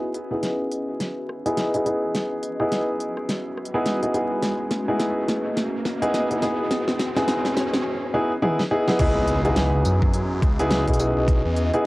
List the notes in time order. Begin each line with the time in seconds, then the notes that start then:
Already playing: B3 C#4 D#4 E4 F#4 G#4 B4 D#5, riser
0.14 closed hi-hat
0.31 B3 D#4 E4 G#4
0.43 snare, closed hi-hat
0.72 closed hi-hat
1.00 snare, closed hi-hat
1.29 cross-stick
1.46 B3 D#4 E4 G#4, closed hi-hat
1.57 snare, closed hi-hat
1.74 B3 D#4 E4 G#4, closed hi-hat
1.86 B3 D#4 E4 G#4, closed hi-hat
2.15 snare, closed hi-hat
2.43 closed hi-hat
2.60 B3 D#4 E4 G#4, cross-stick
2.72 snare, closed hi-hat
3.00 closed hi-hat
3.17 cross-stick
3.29 snare, closed hi-hat
3.57 cross-stick
3.65 closed hi-hat
3.74 B3 D#4 E4 G#4
3.86 snare, closed hi-hat
4.03 B3 D#4 E4 G#4, closed hi-hat
4.14 B3 D#4 E4 G#4, closed hi-hat
4.42 snare, closed hi-hat
4.71 snare, closed hi-hat
4.88 B3 D#4 E4 G#4
4.99 snare, closed hi-hat
5.28 snare, closed hi-hat
5.57 snare, closed hi-hat
5.85 snare
6.02 B3 D#4 E4 G#4, closed hi-hat
6.14 snare, closed hi-hat
6.31 B3 D#4 E4 G#4, closed hi-hat
6.42 B3 D#4 E4 G#4, snare, closed hi-hat
6.71 snare, closed hi-hat
6.88 snare
6.99 snare, closed hi-hat
7.16 B3 D#4 E4 G#4, snare, closed hi-hat
7.28 snare, closed hi-hat
7.45 snare
7.57 snare, closed hi-hat
7.74 snare
8.14 B3 D#4 E4 G#4
8.42 B3 D#4 E4 G#4, high tom
8.59 snare
8.71 B3 D#4 E4 G#4
8.88 B3 D#4 E4 G#4, snare
8.99 C#2 B3 C#4 D#4 E4 G#4, kick, closed hi-hat, crash, impact
9.22 F#4
9.28 closed hi-hat
9.45 B3 D#4 E4 G#4 B4, closed hi-hat
9.56 snare, closed hi-hat
9.65 D#5
9.85 F#2, closed hi-hat, tambourine
10.02 kick
10.13 closed hi-hat
10.42 C#2, kick, cross-stick, closed hi-hat
10.59 B3 D#4 E4 G#4, closed hi-hat
10.71 snare, closed hi-hat
10.88 B1 B3 D#4 E4 G#4, kick, closed hi-hat
10.94 closed hi-hat
11.00 B3 D#4 E4 G#4, closed hi-hat, tambourine
11.16 B1
11.28 kick, closed hi-hat
11.45 E2
11.57 closed hi-hat
11.74 B3 D#4 E4 G#4, cross-stick, closed hi-hat